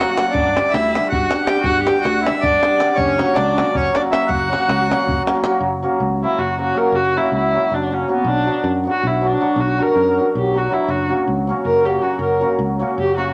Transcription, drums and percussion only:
0.01 davul high medium
0.10 davul high soft
0.17 davul high medium
0.27 davul high soft
0.35 davul low medium
0.47 davul high soft
0.57 davul high medium
0.74 davul high medium
0.95 davul high medium
1.05 davul high soft
1.12 davul low medium
1.31 davul high medium
1.47 davul high medium
1.57 davul high soft
1.64 davul low medium
1.76 davul high soft
1.87 davul high medium
2.05 davul high medium
2.26 davul high medium
2.35 davul high soft
2.43 davul low medium
2.63 davul high medium
2.80 davul high medium
2.89 davul high soft
2.98 davul low medium
3.08 davul high soft
3.19 davul high medium
3.36 davul high medium
3.58 davul high medium
3.66 davul high soft
3.75 davul low medium
3.95 davul high medium
4.13 davul high medium
4.23 davul high soft
4.30 davul low medium
4.42 davul high soft
4.53 davul high medium
4.62 davul high soft
4.69 davul high medium
4.80 davul high soft
4.91 davul high medium
4.99 davul high soft
5.09 davul low medium
5.18 davul high soft
5.27 davul high medium
5.35 davul high soft
5.44 davul high medium

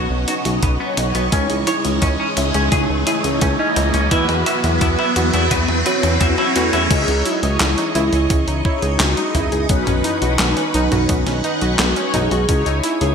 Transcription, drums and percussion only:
0.28 closed hi-hat medium
0.45 closed hi-hat medium
0.45 mid tom medium
0.63 kick medium
0.63 closed hi-hat medium
0.97 closed hi-hat medium
0.97 mid tom medium
1.15 closed hi-hat medium
1.32 kick medium
1.32 closed hi-hat medium
1.32 mid tom medium
1.50 closed hi-hat soft
1.67 closed hi-hat medium
1.67 mid tom medium
1.85 closed hi-hat medium
2.02 kick loud
2.02 closed hi-hat medium
2.02 mid tom medium
2.37 closed hi-hat medium
2.37 mid tom medium
2.54 closed hi-hat medium
2.72 kick loud
2.72 closed hi-hat medium
2.72 mid tom medium
3.07 closed hi-hat medium
3.07 mid tom medium
3.24 closed hi-hat medium
3.41 kick medium
3.41 closed hi-hat medium
3.41 mid tom medium
3.76 closed hi-hat medium
3.76 mid tom medium
3.94 closed hi-hat medium
4.11 kick loud
4.11 closed hi-hat medium
4.11 mid tom medium
4.29 closed hi-hat soft
4.29 mid tom medium
4.46 closed hi-hat medium
4.46 mid tom medium
4.64 closed hi-hat medium
4.64 mid tom medium
4.81 kick medium
4.81 closed hi-hat medium
4.81 mid tom medium
4.99 mid tom medium
5.16 closed hi-hat medium
5.16 mid tom loud
5.34 closed hi-hat medium
5.34 mid tom medium
5.51 kick medium
5.51 closed hi-hat medium
5.51 mid tom loud
5.68 mid tom medium
5.86 closed hi-hat medium
5.86 mid tom loud
6.03 closed hi-hat medium
6.03 mid tom medium
6.21 kick loud
6.21 closed hi-hat medium
6.21 mid tom loud
6.38 mid tom medium
6.56 closed hi-hat medium
6.56 mid tom medium
6.56 mid tom loud
6.73 closed hi-hat medium
6.73 mid tom medium
6.91 kick loud
6.91 closed hi-hat loud
6.91 crash loud
7.08 closed hi-hat soft
7.25 closed hi-hat medium
7.43 closed hi-hat soft
7.60 snare loud
7.60 clap loud
7.60 closed hi-hat loud
7.78 closed hi-hat soft
7.95 closed hi-hat medium
8.13 closed hi-hat soft
8.30 kick loud
8.30 closed hi-hat loud
8.48 closed hi-hat soft
8.65 kick loud
8.82 closed hi-hat soft
9.00 snare loud
9.00 clap loud
9.00 closed hi-hat loud
9.17 closed hi-hat soft
9.35 kick medium
9.35 closed hi-hat medium
9.35 mid tom medium
9.52 closed hi-hat soft
9.69 kick loud
9.69 closed hi-hat loud
9.87 closed hi-hat soft
9.87 mid tom medium
10.04 closed hi-hat medium
10.22 closed hi-hat soft
10.39 snare loud
10.39 clap loud
10.39 closed hi-hat loud
10.57 closed hi-hat soft
10.74 closed hi-hat medium
10.92 closed hi-hat soft
10.92 mid tom medium
11.09 kick loud
11.09 closed hi-hat loud
11.27 snare soft
11.27 closed hi-hat soft
11.44 closed hi-hat soft
11.61 closed hi-hat soft
11.79 snare loud
11.79 clap loud
11.79 closed hi-hat loud
11.96 closed hi-hat soft
12.14 closed hi-hat medium
12.14 mid tom medium
12.31 closed hi-hat soft
12.49 kick loud
12.49 closed hi-hat loud
12.66 closed hi-hat soft
12.84 closed hi-hat medium
13.01 closed hi-hat soft

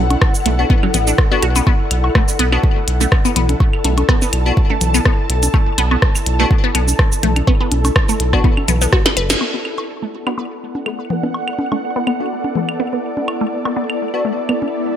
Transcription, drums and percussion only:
0.10 closed hi-hat soft
0.10 low bongo medium
0.10 high woodblock medium
0.22 kick loud
0.22 cross-stick loud
0.22 claves medium
0.35 shaker soft
0.46 closed hi-hat loud
0.70 kick loud
0.83 low bongo medium
0.83 claves medium
0.94 closed hi-hat loud
0.94 low conga medium
0.94 shaker soft
1.07 shaker soft
1.18 kick loud
1.18 cross-stick medium
1.42 closed hi-hat medium
1.42 claves medium
1.56 closed hi-hat soft
1.56 low bongo medium
1.56 shaker soft
1.67 kick loud
1.67 high woodblock medium
1.91 closed hi-hat medium
1.91 claves medium
2.04 high woodblock medium
2.15 kick loud
2.15 cross-stick medium
2.28 shaker soft
2.39 closed hi-hat medium
2.52 claves medium
2.64 kick loud
2.88 closed hi-hat medium
3.01 low bongo medium
3.01 shaker soft
3.12 kick loud
3.12 cross-stick medium
3.12 claves medium
3.25 shaker soft
3.36 closed hi-hat medium
3.36 low conga medium
3.49 closed hi-hat soft
3.49 low bongo medium
3.60 kick loud
3.60 high woodblock medium
3.73 claves medium
3.84 closed hi-hat medium
3.84 low bongo medium
3.98 closed hi-hat soft
3.98 low bongo medium
3.98 high woodblock medium
4.09 kick loud
4.09 cross-stick medium
4.22 shaker soft
4.33 closed hi-hat medium
4.33 claves medium
4.57 kick loud
4.70 low bongo medium
4.81 closed hi-hat medium
4.81 low conga medium
4.81 shaker soft
4.94 claves medium
4.94 shaker soft
5.05 kick loud
5.05 cross-stick medium
5.30 closed hi-hat medium
5.43 closed hi-hat soft
5.43 low bongo medium
5.43 shaker medium
5.54 kick loud
5.54 claves medium
5.54 high woodblock medium
5.78 closed hi-hat medium
5.91 high woodblock medium
6.02 kick loud
6.02 cross-stick medium
6.15 claves medium
6.15 shaker soft
6.26 closed hi-hat medium
6.51 kick loud
6.75 closed hi-hat medium
6.75 claves medium
6.88 low bongo medium
6.88 shaker soft
6.99 kick loud
6.99 cross-stick medium
7.12 shaker soft
7.23 closed hi-hat medium
7.23 low conga medium
7.36 closed hi-hat soft
7.36 low bongo medium
7.36 claves medium
7.47 kick loud
7.47 high woodblock medium
7.72 closed hi-hat medium
7.72 low bongo medium
7.85 closed hi-hat soft
7.85 low bongo medium
7.85 high woodblock medium
7.85 shaker soft
7.96 kick loud
7.96 cross-stick loud
7.96 claves medium
8.09 shaker soft
8.20 closed hi-hat medium
8.33 kick medium
8.33 cross-stick medium
8.44 kick loud
8.57 low bongo medium
8.57 claves medium
8.68 closed hi-hat medium
8.68 low conga medium
8.68 shaker soft
8.82 shaker soft
8.93 kick loud
8.93 cross-stick medium
9.06 snare medium
9.17 closed hi-hat medium
9.17 claves medium
9.30 snare loud
9.30 closed hi-hat soft
9.30 low bongo medium
9.30 shaker medium
9.41 high woodblock medium
9.65 claves medium
9.78 high woodblock medium
10.27 claves medium
10.75 low bongo soft
10.86 claves medium
11.10 low conga medium
11.23 low bongo medium
11.34 high woodblock medium
11.48 claves medium
11.59 low bongo medium
11.72 low bongo medium
11.72 high woodblock medium
12.07 claves medium
12.44 low bongo soft
12.55 low conga medium
12.69 claves medium
13.17 low bongo medium
13.28 claves medium
13.28 high woodblock medium
13.65 high woodblock medium
13.90 claves medium
14.49 claves medium
14.62 low bongo medium

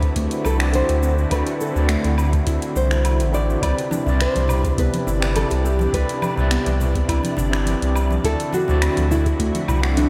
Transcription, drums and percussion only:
0.03 kick loud
0.03 closed hi-hat soft
0.03 cabasa soft
0.16 kick loud
0.16 closed hi-hat medium
0.16 cabasa soft
0.31 closed hi-hat soft
0.31 cabasa soft
0.45 cabasa medium
0.45 low woodblock medium
0.60 finger snap medium
0.60 cabasa soft
0.74 closed hi-hat medium
0.74 cabasa soft
0.89 closed hi-hat soft
0.89 cabasa soft
1.03 cabasa medium
1.18 cabasa soft
1.31 kick loud
1.31 closed hi-hat medium
1.31 cabasa soft
1.31 low woodblock medium
1.47 closed hi-hat soft
1.47 cabasa soft
1.61 cabasa medium
1.76 cabasa soft
1.89 finger snap medium
1.89 closed hi-hat medium
1.89 cabasa soft
2.04 closed hi-hat soft
2.04 cabasa soft
2.18 cabasa medium
2.18 low woodblock medium
2.33 kick loud
2.33 closed hi-hat soft
2.33 cabasa soft
2.47 kick loud
2.47 closed hi-hat medium
2.47 cabasa soft
2.62 closed hi-hat soft
2.62 cabasa soft
2.76 cabasa medium
2.91 finger snap medium
2.91 cabasa soft
3.05 closed hi-hat medium
3.05 cabasa soft
3.05 low woodblock medium
3.20 closed hi-hat soft
3.20 cabasa soft
3.34 cabasa medium
3.50 cabasa soft
3.62 kick loud
3.62 closed hi-hat medium
3.62 cabasa soft
3.62 low woodblock medium
3.78 closed hi-hat soft
3.78 cabasa soft
3.91 high conga medium
3.91 cabasa medium
4.07 low conga medium
4.07 cabasa soft
4.21 finger snap medium
4.21 closed hi-hat medium
4.21 cabasa soft
4.35 closed hi-hat soft
4.35 high conga medium
4.35 cabasa soft
4.48 low conga medium
4.48 cabasa medium
4.48 low woodblock medium
4.64 kick loud
4.64 closed hi-hat soft
4.64 high bongo medium
4.64 cabasa soft
4.78 kick loud
4.78 closed hi-hat medium
4.78 cabasa soft
4.94 closed hi-hat soft
4.94 high conga loud
4.94 cabasa soft
5.07 low conga medium
5.07 cabasa medium
5.22 finger snap medium
5.22 cabasa soft
5.36 closed hi-hat medium
5.36 high conga medium
5.36 cabasa soft
5.36 low woodblock medium
5.51 closed hi-hat soft
5.51 high bongo medium
5.51 cabasa soft
5.66 cabasa medium
5.79 high bongo soft
5.79 high conga medium
5.79 cabasa soft
5.93 kick loud
5.93 closed hi-hat medium
5.93 cabasa soft
6.09 closed hi-hat soft
6.09 cabasa soft
6.22 high conga medium
6.22 cabasa medium
6.22 low woodblock medium
6.38 low conga medium
6.38 cabasa soft
6.51 finger snap medium
6.51 closed hi-hat medium
6.51 cabasa soft
6.66 closed hi-hat soft
6.66 high conga medium
6.66 cabasa soft
6.80 low conga medium
6.80 cabasa medium
6.95 kick medium
6.95 closed hi-hat soft
6.95 high bongo medium
6.95 cabasa soft
7.09 kick loud
7.09 closed hi-hat medium
7.09 cabasa soft
7.09 low woodblock medium
7.24 closed hi-hat soft
7.24 high conga medium
7.24 cabasa soft
7.37 low conga medium
7.37 cabasa medium
7.53 finger snap medium
7.53 cabasa soft
7.66 closed hi-hat medium
7.66 high conga medium
7.66 cabasa soft
7.82 closed hi-hat soft
7.82 cabasa soft
7.96 cabasa medium
7.96 low woodblock medium
8.11 high conga medium
8.11 cabasa soft
8.24 kick loud
8.24 closed hi-hat medium
8.24 cabasa soft
8.40 closed hi-hat soft
8.40 cabasa soft
8.53 high conga medium
8.53 cabasa medium
8.68 low conga medium
8.68 cabasa soft
8.82 finger snap medium
8.82 closed hi-hat medium
8.82 cabasa soft
8.82 low woodblock medium
8.97 closed hi-hat soft
8.97 high conga medium
8.97 cabasa soft
9.11 low conga medium
9.11 cabasa medium
9.26 kick medium
9.26 closed hi-hat soft
9.26 high bongo medium
9.26 cabasa soft
9.39 kick loud
9.39 closed hi-hat medium
9.39 cabasa soft
9.55 closed hi-hat soft
9.55 high conga medium
9.55 cabasa soft
9.68 low conga medium
9.68 cabasa medium
9.68 low woodblock medium
9.83 finger snap medium
9.83 cabasa soft
9.97 closed hi-hat medium
9.97 high conga medium
9.97 cabasa soft

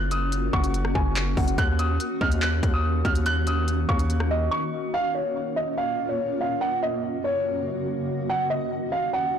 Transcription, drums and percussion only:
0.11 closed hi-hat loud
0.32 closed hi-hat medium
0.53 kick medium
0.64 closed hi-hat medium
0.74 closed hi-hat medium
0.85 cross-stick medium
0.95 kick medium
1.16 clap loud
1.16 closed hi-hat medium
1.37 kick loud
1.37 open hi-hat medium
1.48 closed hi-hat medium
1.58 kick loud
1.58 closed hi-hat medium
1.79 closed hi-hat loud
2.00 closed hi-hat medium
2.21 kick medium
2.32 closed hi-hat medium
2.42 clap loud
2.63 kick loud
2.63 closed hi-hat medium
3.05 kick loud
3.05 closed hi-hat soft
3.15 closed hi-hat medium
3.26 closed hi-hat medium
3.47 closed hi-hat loud
3.68 closed hi-hat medium
3.89 kick medium
3.99 closed hi-hat medium
4.10 closed hi-hat medium
4.20 cross-stick loud

